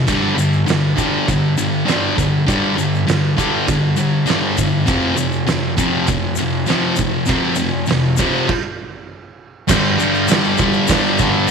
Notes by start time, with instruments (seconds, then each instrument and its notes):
0.07 distorted electric guitar G2 D3 G3, kick, ride, crash, shaker
0.35 distorted electric guitar G2 D3, ride, shaker
0.53 shaker
0.66 distorted electric guitar G2 D3, snare, ride, shaker
0.96 distorted electric guitar G2 D3 G3, kick, ride, shaker
1.28 distorted electric guitar G2 D3, kick, ride, shaker
1.57 distorted electric guitar G2 D3, ride, shaker
1.86 distorted electric guitar G2 D3 G3, snare, ride, shaker
2.17 distorted electric guitar G2 D3, kick, ride, shaker
2.46 distorted electric guitar G2 D3 G3, kick, ride, shaker
2.76 distorted electric guitar G2 D3, ride, shaker
2.95 shaker
3.07 distorted electric guitar G2 D3, snare, ride, shaker
3.37 distorted electric guitar G2 D3 G3, kick, ride, shaker
3.67 distorted electric guitar G2 D3, kick, ride, shaker
3.96 distorted electric guitar G2 D3, ride, shaker
4.26 distorted electric guitar G2 D3 G3, ride, shaker
4.30 snare
4.57 distorted electric guitar G2 D3, kick, ride, shaker
4.86 distorted electric guitar F2 C3 F3, kick, ride, shaker
5.15 distorted electric guitar F2 C3, ride, shaker
5.32 shaker
5.47 distorted electric guitar F2 C3, snare, ride, shaker
5.77 distorted electric guitar F2 C3 F3, kick, ride, shaker
6.07 distorted electric guitar F2 C3, kick, ride, shaker
6.36 distorted electric guitar F2 C3, ride, shaker
6.66 distorted electric guitar F2 C3 F3, snare, ride, shaker
6.96 distorted electric guitar F2 C3, kick, ride, shaker
7.26 distorted electric guitar F2 C3 F3, kick, ride, shaker
7.55 distorted electric guitar F2 C3, shaker
7.59 ride
7.86 distorted electric guitar F2 C3, ride, shaker
7.91 snare
8.17 distorted electric guitar F2 C3 F3, kick, ride, shaker
8.49 kick, crash
9.68 distorted electric guitar G2 D3 G3, kick, snare, crash, shaker
9.98 distorted electric guitar G2 D3 G3, shaker
10.14 shaker
10.28 distorted electric guitar G2 D3 G3, snare, open hi-hat, shaker
10.44 shaker
10.57 distorted electric guitar G2 D3 G3, kick, shaker
10.73 shaker
10.87 distorted electric guitar G2 D3 G3, kick, snare, open hi-hat, shaker
11.18 distorted electric guitar G2 D3 G3, kick, shaker
11.48 shaker